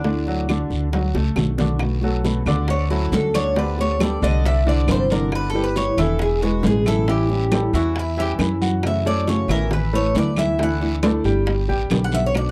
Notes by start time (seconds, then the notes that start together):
Already playing: D2 D4
0.03 D3 A3 D4 F#4, high bongo, high conga, long guiro
0.27 F#3 F#4, high bongo, high conga
0.48 D3 A3 D4 F#4, high bongo, high conga, short guiro, claves
0.70 D2, high bongo, short guiro
0.92 F#3 F#4, muted nylon-string guitar stroke, high bongo, high conga, long guiro
1.14 C#2 A3 A4, high bongo
1.36 B1 D3 A3 D4 F#4, high bongo, low conga, short guiro, claves
1.58 D3 A3 D4 F#4, low bongo, low conga, short guiro
1.78 B2 D3 A3 B3 F#4, high bongo, high conga, long guiro, claves
2.01 F#3 A3 B3 F#4 A4, high bongo, high conga
2.24 B2 D3 A3 B3 F#4, high bongo, high conga, short guiro
2.46 D2 D3 A3 B3 D4 F#4 D5, high bongo, high conga, low conga, short guiro, claves
2.67 C#5, muted nylon-string guitar stroke, high bongo, high conga, long guiro
2.90 F#3 A3 C#4 E4 F#4 A4, high bongo, high conga
3.12 D2 D3 A3 C#4 F#4 A4, high bongo, low bongo, high conga, short guiro
3.34 D3 D4 C#5 D5, high conga, short guiro, claves
3.55 D3 A3 B3 D4 G4 B4 D5, high bongo, high conga, long guiro
3.78 A3 B3 G4 C#5, high bongo, high conga
3.99 D3 G3 A3 B3 G4 A4 D5, high bongo, high conga, short guiro, claves
4.22 C2 D3 A3 B3 D4 D5 D#5, high bongo, high conga, short guiro
4.42 E5, muted nylon-string guitar stroke, high bongo, high conga, long guiro
4.64 D3 G3 D4 E4 D5, high bongo, high conga
4.69 D5
4.86 G1 C3 E3 G3 D4 E4, high bongo, low bongo, high conga, short guiro, claves
4.91 C5
5.10 D3 D4 A#4 D5, high conga, short guiro
5.30 G3 B3 E4, high bongo, high conga, long guiro, claves
5.35 B4
5.50 E4 A4
5.54 G3 B3 G4 B4, high bongo, high conga
5.64 B4
5.75 G3 B3 E4 C#5, high bongo, high conga, short guiro
5.97 E1 E3 B3 E4 A4 E5, high bongo, high conga, low conga, short guiro, claves
6.19 G#4, muted nylon-string guitar stroke, high bongo, high conga, long guiro
6.41 G#3 B3 E4 F#4 G#4 B4, high bongo, high conga
6.63 A1 B2 D3 G#3 B3 E4 G#4, high bongo, low bongo, high conga, short guiro
6.86 E3 E4 A4 E5, high conga, short guiro, claves
7.07 E3 G3 C#4 E4 G4 E5, high bongo, high conga, long guiro
7.29 G3 C#4 E4, high bongo, high conga
7.52 E3 G3 C#4 E4 G4 A4, high bongo, high conga, short guiro, claves
7.73 E2 E3 G3 C#4 E4 F#4 E5, high bongo, high conga, short guiro
7.96 E4, muted nylon-string guitar stroke, high bongo, high conga, long guiro
8.17 E3 G3 C#4 E4 G4 E5, high bongo, high conga
8.39 F#2 E3 C#4 E4, high bongo, low bongo, high conga, short guiro, claves
8.61 F#4 F#5, high conga, short guiro
8.83 C#3 E3 A3 C#4 F#4 E5, high bongo, high conga, long guiro, claves
9.05 A3 C#4 F#4 A4 C#5 D5, high bongo, high conga
9.27 C#3 E3 A3 C#4 F#4 C#5, high bongo, high conga, short guiro
9.48 A1 E3 A3 C#4 E4 F#4 A#4 E5, high bongo, high conga, low conga, short guiro, claves
9.71 B4, muted nylon-string guitar stroke, high bongo, high conga, low conga, long guiro
9.93 A3 B3 E4 A4 B4 C#5, high bongo, high conga
10.15 D2 E3 A3 B3 E4 D5, high bongo, low bongo, high conga, short guiro
10.36 E3 E4 E5, high conga, short guiro, claves
10.59 D3 E3 A3 D4 E4 E5, high bongo, high conga, long guiro
10.63 F#5
10.81 A3 D4 E4, high bongo, high conga
11.03 D3 A3 D4 E4 A4 D5, high bongo, high conga, short guiro, claves
11.24 G1 G3 A3 D4 E4 G4 G5, high bongo, high conga, short guiro
11.46 muted nylon-string guitar stroke, high bongo, high conga, long guiro
11.68 A1 G3 B3 G4 G5, high bongo, high conga
11.90 B1 B2 D3 G3 B3 G4, high bongo, low bongo, high conga, short guiro, claves
12.04 F#5
12.12 E5 F#5, high conga, short guiro
12.26 C#5
12.34 B2 D3 B3 D4 F#4 D5, high bongo, long guiro, claves